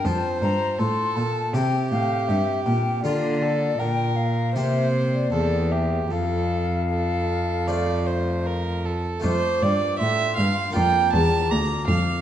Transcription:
<<
  \new Staff \with { instrumentName = "Flute" } { \time 4/4 \key f \major \tempo 4 = 79 a''8 bes''8 c'''8 a''8 g''8 f''8 e''8 g''8 | d''4 g''8 f''8 e''8. d''8. e''8 | f''2.~ f''8 r8 | d'''4 c'''4 bes''4 d'''4 | }
  \new Staff \with { instrumentName = "Violin" } { \time 4/4 \key f \major c''4 a'4 g'2 | f'8 a'8 bes'4 c''4 a'8 g'8 | a'4 a'4 d''8 c''8 bes'8 a'8 | c''8 d''8 e''8 f''8 g''8 a''8 bes''8 f''8 | }
  \new Staff \with { instrumentName = "Harpsichord" } { \time 4/4 \key f \major <c' f'>2 <c' e' g'>2 | <bes f' bes'>2 <bes g' c''>2 | r2 <a f' c''>2 | <a f' c''>2 <bes f' d''>2 | }
  \new Staff \with { instrumentName = "Harpsichord" } { \clef bass \time 4/4 \key f \major f,8 g,8 a,8 bes,8 c8 a,8 g,8 bes,8 | d4 bes,4 c4 e,4 | f,2.~ f,8. r16 | f,8 g,8 a,8 g,8 f,8 e,8 d,8 f,8 | }
  \new Staff \with { instrumentName = "Cello" } { \clef bass \time 4/4 \key f \major f,8 g,8 a,8 bes,8 c8 a,8 g,8 bes,8 | d4 bes,4 c4 e,4 | f,2.~ f,8. r16 | f,8 g,8 a,8 g,8 f,8 e,8 d,8 f,8 | }
>>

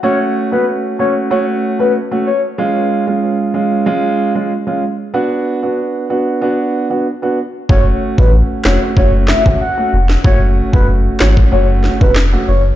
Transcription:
<<
  \new Staff \with { instrumentName = "Soft synth lead" } { \time 4/4 \key fis \minor \tempo 4 = 94 cis''16 r8 b'16 r8 cis''16 r16 cis''16 r8 b'16 r8 cis''16 r16 | r1 | r1 | cis''16 r8 b'16 r8 cis''16 r16 cis''16 r16 e''16 r16 fis''8. r16 |
cis''16 r8 b'16 r8 cis''16 r16 cis''16 r8 b'16 r8 cis''16 r16 | }
  \new Staff \with { instrumentName = "Grand piano" } { \time 4/4 \key fis \minor <a cis' fis'>8. <a cis' fis'>8. <a cis' fis'>8 <a cis' fis'>8. <a cis' fis'>16 r16 <a cis' fis'>16 r8 | <gis cis' eis'>8. <gis cis' eis'>8. <gis cis' eis'>8 <gis cis' eis'>8. <gis cis' eis'>16 r16 <gis cis' eis'>16 r8 | <b d' fis'>8. <b d' fis'>8. <b d' fis'>8 <b d' fis'>8. <b d' fis'>16 r16 <b d' fis'>16 r8 | <a cis' fis'>8. <a cis' fis'>8. <a cis' fis'>8 <a cis' fis'>8. <a cis' fis'>16 r16 <a cis' fis'>16 r8 |
<a cis' fis'>8. <a cis' fis'>8. <a cis' fis'>8 <a cis' fis'>8. <a cis' fis'>16 r16 <a cis' fis'>16 r8 | }
  \new Staff \with { instrumentName = "Sub bass" } { \clef bass \time 4/4 \key fis \minor r1 | r1 | r1 | fis,,8 r16 a,,8 r16 eis,,16 r16 fis,,8. gis,,16 r8 eis,,8 |
fis,,8. fis,,8. gis,,8 fis,,8. eis,,8. fis,,8 | }
  \new DrumStaff \with { instrumentName = "Drums" } \drummode { \time 4/4 r4 r4 r4 r4 | r4 r4 r4 r4 | r4 r4 r4 r4 | bd8. bd16 r8 <hc sn>8 bd8 <hc sn>16 bd16 r8. sn16 |
bd8. bd16 r8 <hc sn>16 bd16 r8 sn16 bd16 <hc sn>4 | }
>>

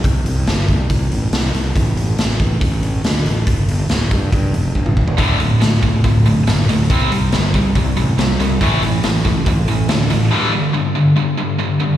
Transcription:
<<
  \new Staff \with { instrumentName = "Distorted electric guitar" } { \clef bass \time 4/4 \key c \major \tempo 4 = 140 r1 | r1 | r1 | <d, a, d>8 <d, a,>8 <d, a,>8 <d, a,>8 <d, a,>8 <d, a,>8 <d, a,>8 <d, a,>8 |
<c g c'>8 <c g>8 <c g>8 <c g>8 <c g>8 <c g>8 <c g>8 <c g>8 | <a, e a>8 <a, e>8 <a, e>8 <a, e>8 <a, e>8 <a, e>8 <a, e>8 <a, e>8 | <g, d g>8 <g, d>8 <g, d>8 <g, d>8 <g, d>8 <g, d>8 <g, d>8 <g, d>8 | }
  \new Staff \with { instrumentName = "Distorted electric guitar" } { \clef bass \time 4/4 \key c \major r1 | r1 | r1 | <d, a, d>8 <d, a,>8 <d, a,>8 <d, a,>8 <d, a,>8 <d, a,>8 <d, a,>8 <d, a,>8 |
<c g c'>8 <c g>8 <c g>8 <c g>8 <c g>8 <c g>8 <c g>8 <c g>8 | <a, e a>8 <a, e>8 <a, e>8 <a, e>8 <a, e>8 <a, e>8 <a, e>8 <a, e>8 | <g, d g>8 <g, d>8 <g, d>8 <g, d>8 <g, d>8 <g, d>8 <g, d>8 <g, d>8 | }
  \new Staff \with { instrumentName = "Fingered electric bass" } { \clef bass \time 4/4 \key c \major c,8 c,8 g,,8 c,8 c,8 a,,8 c,8 c,8 | a,,8 a,,8 a,,8 a,,8 a,,4 d,8 a,,8 | g,,8 g,,8 d,,8 g,8 g,8 f,,8 g,,8 e,,8 | d,,8 d,,8 d,,8 d,,8 d,,4 g,,8 d,,8 |
c,8 c,8 g,,8 c,8 c,8 a,,8 c,8 c,8 | a,,8 a,,8 a,,8 a,,8 a,,4 d,8 a,,8 | r1 | }
  \new DrumStaff \with { instrumentName = "Drums" } \drummode { \time 4/4 <hho bd>8 hho8 <hho sn>8 <hho bd>8 <hho bd>8 hho8 <hho sn>8 hho8 | <hho bd>8 hho8 <hho sn>8 <hho bd>8 <hho bd>8 hho8 <hho sn>8 hho8 | <hho bd>8 hho8 <hho sn>8 <hho bd>8 <hho bd>8 hho8 bd16 toml16 bd16 tomfh16 | <hho bd>8 hho8 <hho sn>8 <hho bd>8 <hho bd>8 hho8 <hho sn>8 hho8 |
<hho bd>8 hho8 <hho sn>8 <hho bd>8 <hho bd>8 hho8 <hho sn>8 hho8 | <hho bd>8 hho8 <hho sn>8 <hho bd sn>8 <hho bd>8 hho8 <hho sn>8 hho8 | r4 r4 r4 r4 | }
>>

